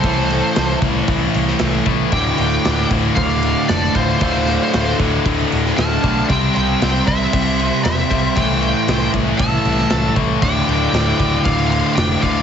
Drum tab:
CC |x-x-x-x-x-x-x-x-|x-x-x-x-x-x-x-x-|x-x-x-x-x-x-x-x-|x-x-x-x-x-x-x-x-|
SD |----o------oo---|----o-------o---|--o-o------oo---|----o-------o---|
BD |o-----o-o-----o-|o-----o-o-----o-|o-----o-o-----o-|o-----o-o-----o-|

CC |x-x-x-x-x-x-x-x-|x-x-x-x-x-x-x-x-|
SD |----o------oo---|----o-------o---|
BD |o-----o-o-----o-|o-----o-o-----o-|